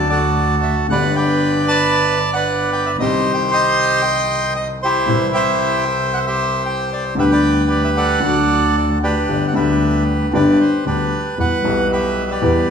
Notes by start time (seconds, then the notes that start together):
Already playing: D2 D3 F#3 A3 F#4 A4
0.10 F#4 A4 D5
0.63 E5
0.89 G1 G2 D3 G3 B3 B4 D5 F#5
0.93 G4
1.16 B4 D5 G5
1.68 D5 A5
2.33 B4 D5 F#5
2.73 G5
2.86 E5
2.98 C2 C3 D#3 G3 C4 G4 C5 D#5
3.02 G4
3.34 G5
3.52 D#5 G5 C6
4.56 D#5
4.82 E4 G4 C5
5.06 C2 C3 E3 G3 C4
5.10 G4
5.34 C5 E5 G5
6.14 C5 F#5
6.27 G4 C5 E5
6.66 G5
6.93 D5
7.15 D2 D3 G3 B3 E5
7.19 G4 B4
7.31 B4 D5 G5
7.71 D5
7.84 E5
7.97 A4 D5 F#5
8.20 D2 D3 F#3 A3 F#4
8.78 D5
9.03 D4 G4 B4
9.28 G1 G2 D3 G3 B3 G4
9.48 F#5
9.53 D2 D3 G3 B3 G4 B4 E5
9.57 G4
10.33 G1 G2 D3 G3 B3 G4 B4 D5
10.61 C5
10.85 D2 D3 G3 B3 D4 G4 B4
11.38 E2 E3 G3 B3 G4 B4 F#5
11.63 B1 B2 E3 G3 B3 G4
11.93 G4 B4 E5
12.31 G4 B4 D5
12.41 E2 E3 G3 B3 G4